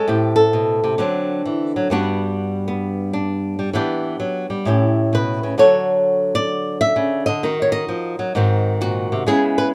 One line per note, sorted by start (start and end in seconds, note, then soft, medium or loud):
0.00 0.35 A4 medium
0.08 0.97 A2 medium
0.08 0.97 C4 soft
0.08 0.35 G4 soft
0.36 1.89 A4 medium
0.53 0.83 B2 medium
0.84 0.98 C3 medium
0.98 1.88 D3 medium
0.98 1.44 F#3 soft
0.98 1.89 C4 soft
0.98 1.92 D4 medium
1.46 1.75 E3 medium
1.76 1.90 F#3 medium
1.90 3.72 G2 medium
1.90 3.58 G3 medium
1.90 2.66 B3 medium
1.90 3.12 D4 medium
1.90 3.73 F#4 medium
2.68 3.72 B3 medium
3.13 3.72 D4 medium
3.59 3.72 G3 medium
3.73 4.19 E3 medium
3.73 4.64 B3 medium
3.73 4.64 D4 medium
3.73 4.65 G4 medium
4.20 4.50 F#3 medium
4.50 4.65 G3 medium
4.65 5.56 A2 medium
4.65 5.58 C#4 soft
4.65 5.57 E4 soft
4.65 5.13 G4 soft
5.13 5.43 B2 medium
5.13 5.59 B4 medium
5.43 5.58 C#3 medium
5.58 7.27 D3 medium
5.58 6.96 F#3 soft
5.58 7.41 F#4 soft
5.58 7.41 A4 soft
5.58 6.35 C#5 loud
6.35 6.80 D5 loud
6.81 7.26 E5 loud
6.96 7.27 C#3 medium
7.26 7.43 D3 medium
7.26 7.62 D#5 loud
7.43 7.88 D#3 medium
7.43 8.33 D#4 soft
7.43 8.34 F#4 soft
7.62 7.72 C#5 medium
7.72 9.26 D#5 loud
7.88 8.19 F3 medium
8.19 8.34 F#3 medium
8.35 9.25 G#2 medium
8.35 9.27 D#3 soft
8.35 9.26 C4 medium
8.35 8.80 F#4 soft
8.81 9.12 A#2 medium
8.81 9.27 F#4 medium
9.12 9.26 C3 medium
9.27 9.74 C#3 medium
9.27 9.74 G#3 soft
9.27 9.74 B3 medium
9.27 9.73 E4 medium
9.27 9.43 G#4 medium
9.58 9.67 B4 medium